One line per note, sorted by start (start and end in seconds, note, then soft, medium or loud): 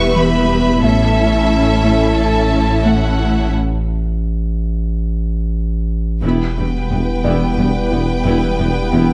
0.00 0.86 E1 medium
0.00 0.84 E2 medium
0.00 0.84 G3 medium
0.00 0.80 B3 medium
0.00 0.82 E4 medium
0.00 0.80 G4 medium
0.00 0.80 B4 medium
0.00 0.81 B4 medium
0.00 0.80 E5 medium
0.00 0.15 C#6 medium
0.16 0.37 E3 medium
0.16 0.84 B5 medium
0.50 0.70 B3 medium
0.83 6.23 A1 medium
0.83 3.49 A2 medium
0.83 3.53 A3 medium
0.83 1.04 A3 medium
0.83 3.54 C#4 medium
0.83 3.50 C#4 medium
0.83 3.50 E4 medium
0.83 3.50 E4 soft
0.83 3.54 A4 medium
0.83 3.50 A4 medium
0.83 3.50 E5 medium
0.83 2.82 E5 soft
0.83 2.16 E5 medium
1.84 2.05 A3 medium
2.17 2.38 A4 soft
2.17 2.84 A5 medium
2.86 3.06 A3 medium
2.86 3.54 F#5 medium
3.19 3.40 E4 soft
6.21 6.37 E1 soft
6.21 9.13 E1 medium
6.21 6.31 E2 soft
6.21 6.43 E3 medium
6.21 9.13 G3 soft
6.21 9.13 B3 medium
6.21 9.13 B3 soft
6.21 6.55 B3 soft
6.21 9.13 E4 soft
6.21 6.55 E4 soft
6.21 9.13 B4 soft
6.21 9.13 G5 soft
6.57 6.71 E1 soft
6.57 6.65 E2 soft
6.57 6.65 G3 soft
6.57 6.65 B3 soft
6.57 6.77 E4 soft
6.90 7.04 E1 soft
6.90 6.99 E2 soft
6.90 7.11 G3 soft
6.90 6.99 B3 soft
7.24 7.38 E1 soft
7.24 7.32 E2 soft
7.24 7.44 E3 medium
7.24 7.56 B3 soft
7.24 7.56 E4 soft
7.24 9.13 D5 soft
7.58 7.72 E1 soft
7.58 7.66 E2 soft
7.58 7.78 G3 soft
7.58 7.66 G3 soft
7.58 7.67 B3 soft
7.91 8.06 E1 soft
7.91 7.99 E2 soft
7.91 8.00 B3 soft
7.91 8.12 E4 soft
8.25 8.40 E1 soft
8.25 8.33 E2 soft
8.25 8.46 E3 medium
8.25 8.57 B3 soft
8.25 8.57 E4 soft
8.59 8.74 E1 soft
8.59 8.67 E2 soft
8.59 8.67 G3 soft
8.59 8.79 G3 soft
8.59 8.67 B3 soft
8.92 9.07 E1 soft
8.92 9.00 E2 soft
8.92 9.13 E3 medium
8.92 9.13 B3 soft
8.92 9.13 E4 soft